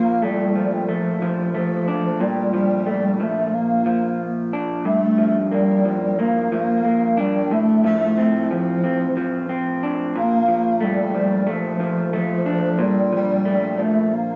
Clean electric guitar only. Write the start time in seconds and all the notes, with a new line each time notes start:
Already playing: A#2 F3 D4
0.22 A3
0.55 F3
0.89 A3
1.22 F3
1.54 A3
1.88 D4
2.20 A#2
2.53 F3
2.86 A3
3.20 F3
3.86 F3
4.53 D4
4.85 G2
5.18 F3
5.52 A#3
5.85 F3
6.19 A#3
6.52 F3
6.85 A#3
7.17 D4
7.51 A2
7.84 F3
8.18 C4
8.51 F3
8.84 C4
9.17 F3
9.49 C4
9.83 D4
10.16 A#2
10.48 F3
10.80 A3
11.15 F3
11.47 A3
11.80 F3
12.13 A3
12.46 D4
12.79 A#2
13.12 F3
13.45 A3
13.78 F3